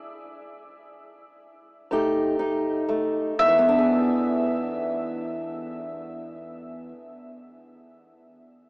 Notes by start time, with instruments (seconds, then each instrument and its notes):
Already playing: mandolin D5
1.91 steel-string acoustic guitar F2 A3 D#4 G4
2.39 steel-string acoustic guitar D#4
2.89 steel-string acoustic guitar A3
3.39 steel-string acoustic guitar E2, mandolin E5
3.48 steel-string acoustic guitar E3
3.58 steel-string acoustic guitar B3
3.69 steel-string acoustic guitar D4
3.78 steel-string acoustic guitar G#4